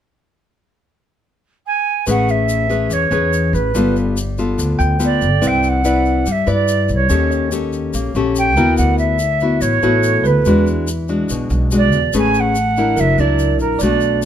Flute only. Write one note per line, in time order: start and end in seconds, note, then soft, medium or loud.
1.66 2.04 G#5 loud
2.10 2.32 F#5 loud
2.30 2.94 E5 medium
2.92 3.55 C#5 medium
3.54 3.96 B4 medium
5.04 5.49 D5 medium
5.47 5.70 G5 medium
5.68 6.33 F#5 loud
6.31 6.50 E5 medium
6.53 6.90 D5 medium
6.94 7.51 C#5 medium
8.38 8.76 G5 loud
8.77 8.97 F#5 loud
8.98 9.62 E5 medium
9.61 10.27 C#5 medium
10.26 10.67 B4 medium
11.76 12.13 D5 loud
12.18 12.41 G#5 loud
12.40 13.01 F#5 loud
13.00 13.21 E5 loud
13.19 13.59 D5 medium
13.60 13.82 A#4 medium
13.81 14.23 D5 medium